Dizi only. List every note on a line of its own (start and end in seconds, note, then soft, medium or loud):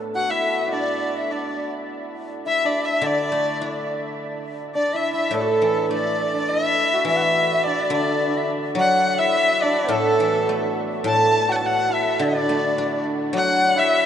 0.15 0.32 F#5 medium
0.30 0.75 E5 medium
0.73 1.18 D5 medium
1.17 1.34 E5 medium
1.32 1.74 D5 medium
2.46 2.81 E5 medium
2.84 3.06 E5 medium
3.04 3.89 D5 medium
4.75 4.95 D5 medium
4.93 5.12 E5 medium
5.13 5.36 E5 medium
5.35 5.42 A4 medium
5.41 5.50 F#4 medium
5.48 5.92 A4 medium
5.93 6.33 D5 medium
6.37 6.52 D5 medium
6.51 7.08 E5 medium
7.08 7.18 E5 medium
7.16 7.24 F#5 medium
7.23 7.51 E5 medium
7.54 7.65 E5 medium
7.66 7.92 D5 medium
7.96 8.39 D5 medium
8.37 8.51 E5 medium
8.78 9.13 F#5 loud
9.13 9.20 F#5 medium
9.18 9.92 E5 medium
9.90 10.78 A4 medium
11.06 11.51 A5 loud
11.50 11.64 F#5 medium
11.65 11.95 F#5 medium
11.93 12.24 E5 medium
12.22 12.29 D5 medium
12.28 12.36 E5 medium
12.34 13.06 D5 medium
13.34 13.79 F#5 medium
13.78 14.06 E5 medium